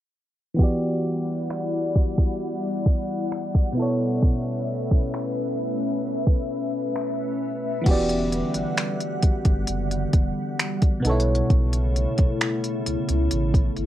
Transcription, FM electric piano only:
0, 0, Header, 1, 2, 480
1, 0, Start_track
1, 0, Tempo, 909091
1, 312, Time_signature, 4, 2, 24, 8
1, 7318, End_track
2, 0, Start_track
2, 0, Title_t, "FM electric piano"
2, 0, Program_c, 0, 5
2, 287, Note_on_c, 0, 52, 75
2, 298, Note_on_c, 0, 59, 67
2, 312, Note_on_c, 0, 66, 69
2, 323, Note_on_c, 0, 67, 67
2, 335, Note_on_c, 0, 74, 81
2, 423, Control_c, 0, 64, 127
2, 1958, Note_off_c, 0, 52, 0
2, 1964, Note_off_c, 0, 59, 0
2, 1967, Note_on_c, 0, 47, 69
2, 1971, Note_off_c, 0, 66, 0
2, 1977, Note_off_c, 0, 67, 0
2, 1979, Note_on_c, 0, 59, 64
2, 1983, Note_off_c, 0, 74, 0
2, 1992, Note_on_c, 0, 64, 63
2, 1999, Control_c, 0, 64, 0
2, 2003, Note_on_c, 0, 69, 66
2, 2017, Note_on_c, 0, 73, 77
2, 2099, Control_c, 0, 64, 127
2, 3879, Note_off_c, 0, 47, 0
2, 3885, Note_off_c, 0, 59, 0
2, 3891, Note_off_c, 0, 64, 0
2, 3896, Note_off_c, 0, 69, 0
2, 3904, Note_off_c, 0, 73, 0
2, 4127, Note_on_c, 0, 52, 72
2, 4140, Note_on_c, 0, 59, 72
2, 4152, Note_on_c, 0, 66, 70
2, 4158, Control_c, 0, 64, 0
2, 4165, Note_on_c, 0, 67, 70
2, 4177, Note_on_c, 0, 74, 89
2, 4263, Control_c, 0, 64, 127
2, 5799, Note_off_c, 0, 52, 0
2, 5805, Note_off_c, 0, 59, 0
2, 5807, Note_on_c, 0, 47, 73
2, 5811, Note_off_c, 0, 66, 0
2, 5818, Note_off_c, 0, 67, 0
2, 5820, Note_on_c, 0, 59, 66
2, 5824, Note_off_c, 0, 74, 0
2, 5832, Note_on_c, 0, 63, 55
2, 5840, Control_c, 0, 64, 0
2, 5845, Note_on_c, 0, 69, 63
2, 5858, Note_on_c, 0, 73, 79
2, 5866, Note_off_c, 0, 63, 0
2, 5867, Note_on_c, 0, 64, 67
2, 5918, Control_c, 0, 64, 127
2, 7239, Note_off_c, 0, 47, 0
2, 7245, Note_off_c, 0, 59, 0
2, 7257, Note_off_c, 0, 69, 0
2, 7264, Note_off_c, 0, 73, 0
2, 7268, Note_off_c, 0, 64, 0
2, 7318, End_track
0, 0, End_of_file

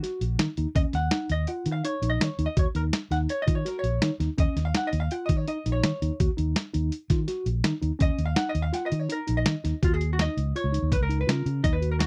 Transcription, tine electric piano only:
0, 0, Header, 1, 2, 480
1, 0, Start_track
1, 0, Key_signature, -6, "minor"
1, 0, Tempo, 362757
1, 996, Time_signature, 5, 2, 24, 8
1, 15967, End_track
2, 0, Start_track
2, 0, Title_t, "Tine electric piano"
2, 0, Program_c, 0, 4
2, 40, Note_on_c, 0, 66, 77
2, 291, Note_off_c, 0, 66, 0
2, 522, Note_on_c, 0, 63, 76
2, 647, Note_off_c, 0, 63, 0
2, 765, Note_on_c, 0, 63, 69
2, 889, Note_off_c, 0, 63, 0
2, 993, Note_on_c, 0, 61, 84
2, 1246, Note_off_c, 0, 61, 0
2, 1475, Note_on_c, 0, 63, 70
2, 1728, Note_off_c, 0, 63, 0
2, 1961, Note_on_c, 0, 65, 72
2, 2212, Note_off_c, 0, 65, 0
2, 2440, Note_on_c, 0, 63, 76
2, 2565, Note_off_c, 0, 63, 0
2, 2683, Note_on_c, 0, 63, 68
2, 2934, Note_off_c, 0, 63, 0
2, 3159, Note_on_c, 0, 63, 66
2, 3285, Note_off_c, 0, 63, 0
2, 3397, Note_on_c, 0, 66, 77
2, 3523, Note_off_c, 0, 66, 0
2, 3638, Note_on_c, 0, 63, 71
2, 3890, Note_off_c, 0, 63, 0
2, 4115, Note_on_c, 0, 63, 72
2, 4368, Note_off_c, 0, 63, 0
2, 4590, Note_on_c, 0, 65, 67
2, 4718, Note_off_c, 0, 65, 0
2, 4832, Note_on_c, 0, 66, 84
2, 5086, Note_off_c, 0, 66, 0
2, 5321, Note_on_c, 0, 63, 75
2, 5447, Note_off_c, 0, 63, 0
2, 5553, Note_on_c, 0, 63, 70
2, 5680, Note_off_c, 0, 63, 0
2, 5791, Note_on_c, 0, 61, 87
2, 6045, Note_off_c, 0, 61, 0
2, 6276, Note_on_c, 0, 63, 73
2, 6529, Note_off_c, 0, 63, 0
2, 6771, Note_on_c, 0, 65, 75
2, 7019, Note_off_c, 0, 65, 0
2, 7247, Note_on_c, 0, 63, 85
2, 7370, Note_off_c, 0, 63, 0
2, 7486, Note_on_c, 0, 63, 76
2, 7736, Note_off_c, 0, 63, 0
2, 7965, Note_on_c, 0, 63, 75
2, 8089, Note_off_c, 0, 63, 0
2, 8206, Note_on_c, 0, 66, 91
2, 8330, Note_off_c, 0, 66, 0
2, 8431, Note_on_c, 0, 63, 74
2, 8685, Note_off_c, 0, 63, 0
2, 8914, Note_on_c, 0, 63, 72
2, 9167, Note_off_c, 0, 63, 0
2, 9399, Note_on_c, 0, 65, 75
2, 9525, Note_off_c, 0, 65, 0
2, 9629, Note_on_c, 0, 66, 85
2, 9883, Note_off_c, 0, 66, 0
2, 10113, Note_on_c, 0, 63, 82
2, 10240, Note_off_c, 0, 63, 0
2, 10341, Note_on_c, 0, 63, 73
2, 10472, Note_off_c, 0, 63, 0
2, 10573, Note_on_c, 0, 61, 95
2, 10832, Note_off_c, 0, 61, 0
2, 11065, Note_on_c, 0, 63, 80
2, 11320, Note_off_c, 0, 63, 0
2, 11548, Note_on_c, 0, 65, 82
2, 11803, Note_off_c, 0, 65, 0
2, 12029, Note_on_c, 0, 63, 86
2, 12157, Note_off_c, 0, 63, 0
2, 12269, Note_on_c, 0, 63, 74
2, 12523, Note_off_c, 0, 63, 0
2, 12757, Note_on_c, 0, 63, 74
2, 12883, Note_off_c, 0, 63, 0
2, 13000, Note_on_c, 0, 66, 80
2, 13252, Note_off_c, 0, 66, 0
2, 13480, Note_on_c, 0, 63, 69
2, 13732, Note_off_c, 0, 63, 0
2, 13967, Note_on_c, 0, 65, 72
2, 14090, Note_off_c, 0, 65, 0
2, 14189, Note_on_c, 0, 63, 65
2, 14444, Note_off_c, 0, 63, 0
2, 14678, Note_on_c, 0, 63, 71
2, 14804, Note_off_c, 0, 63, 0
2, 14912, Note_on_c, 0, 65, 75
2, 15166, Note_off_c, 0, 65, 0
2, 15397, Note_on_c, 0, 63, 86
2, 15524, Note_off_c, 0, 63, 0
2, 15635, Note_on_c, 0, 66, 66
2, 15888, Note_off_c, 0, 66, 0
2, 15967, End_track
0, 0, End_of_file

